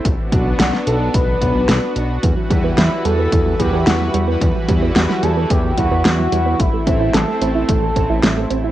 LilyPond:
<<
  \new Staff \with { instrumentName = "Analog synth lead" } { \time 4/4 \key e \minor \tempo 4 = 110 r4 fis'8 a'8 b'4. r8 | r4 e'8 a'4 g'8 fis'8. r16 | r4 fis'8 a'8 g'8 fis'8 fis'4 | e'4 a'8 a'4. r4 | }
  \new Staff \with { instrumentName = "Analog synth pad" } { \time 4/4 \key e \minor << { <b d' fis'>1 | <e g b'>1~ | <e g b'>1 | <a c'>1 | } \\ { r1 | e'1~ | e'1~ | e'1 | } >> }
  \new Staff \with { instrumentName = "Synth arpeggio sound" } { \clef bass \time 4/4 \key e \minor r1 | e16 fis16 g16 b16 e16 fis16 g16 b16 e16 fis16 g16 b16 e16 fis16 g16 b16 | e16 fis16 g16 b16 e16 fis16 g16 b16 e16 fis16 g16 b16 e16 fis16 g16 b16 | e16 a16 c'16 e'16 e16 a16 c'16 e'16 e16 a16 c'16 e'16 e16 a16 c'16 e'16 | }
  \new Staff \with { instrumentName = "Analog synth bass" } { \clef bass \time 4/4 \key e \minor b,,16 r16 b,,8 b,,16 r16 b,,8 b,,8 b,,16 b,,16 b,,16 r16 b,,8 | e,16 r16 e,8 e,16 r16 e,8 e,8 e,16 e,16 e,8 e,8 | e,16 r16 e,8 e,16 r16 e,8 e,8 e,16 e,16 e,8 e,8 | a,,16 r16 a,,8 a,,16 r16 a,,8 a,,8 a,,16 a,,16 a,,8 a,,8 | }
  \new DrumStaff \with { instrumentName = "Drums" } \drummode { \time 4/4 <hh bd>8 <hh bd>8 <hh sn>16 sn16 hh8 <hh bd>8 <hh bd>8 <hh sn>8 hh8 | <hh bd>8 <hh bd>8 <hh sn>8 hh8 <hh bd>8 <hh bd>8 <hh sn>8 hh8 | <hh bd>8 <hh bd>8 <hh sn>16 sn16 hh8 <hh bd>8 <hh bd>8 <hh sn>8 hh8 | <hh bd>8 <hh bd>8 <hh sn>8 hh8 <hh bd>8 <hh bd>8 <hh sn>8 hh8 | }
>>